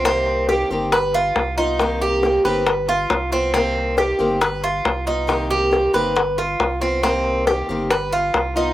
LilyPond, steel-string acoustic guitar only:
\new Staff \with { instrumentName = "Steel-string acoustic guitar" } { \time 4/4 \key c \minor \tempo 4 = 137 <c ees bes c' g'>4 <ees bes c' g'>8 <ees bes c' g'>8 r4. <b f'>8 | <c ees bes c' g'>4 <ees bes c' g'>8 <ees bes c' g'>8 r4. <b f'>8 | <c ees bes c' g'>4 <ees bes c' g'>8 <ees bes c' g'>8 r4. <b f'>8 | <c ees bes c' g'>4 <ees bes c' g'>8 <ees bes c' g'>8 r4. <b f'>8 |
<c ees bes c' g'>4 <ees bes c' g'>8 <ees bes c' g'>8 r4. <b f'>8 | }